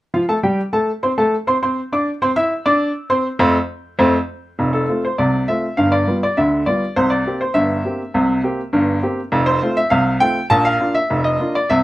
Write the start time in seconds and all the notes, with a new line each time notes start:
0.14 F3 F4 F5
0.29 A3 A4 A5
0.43 G3 G4 G5
0.73 A3 A4 A5
1.03 C4 C5 C6
1.18 A3 A4 A5
1.47 C4 C5 C6
1.63 C4 C5 C6
1.92 D4 D5 D6
2.22 C4 C5 C6
2.36 E4 E5 E6
2.66 D4 D5 D6
3.10 C4 C5 C6
3.39 F2 A3 C4 C5
3.99 F2 A3 C4 C5
4.59 F1 F2
4.73 A4
4.89 A3 C4 F4
5.05 C5
5.18 C2 C3 D5
5.48 A3 C4 F4 E5
5.77 G1 G2 F5
5.92 D5
6.07 G3 B3 F4
6.23 D5
6.37 D2 D3 E5
6.66 G3 B3 F4 D5
6.96 C2 C3 C5
7.10 D5
7.26 A#3 C4 G4
7.41 C5
7.54 G1 G2 E5
7.85 A#3 C4 G4
8.14 C2 C3
8.43 A#3 C4 G4
8.73 G1 G2
9.02 A#3 C4 G4
9.32 F1 F2
9.46 C5
9.62 A3 C4 F4
9.77 E5
9.90 C2 C3 F5
10.20 A3 C4 F4 G5
10.50 A#1 A#2 A5
10.65 F5
10.80 A#3 D4 F4
10.95 E5
11.10 F1 F2
11.24 D#5
11.40 A#3 D4 F4
11.55 D5
11.70 C2 C3 E5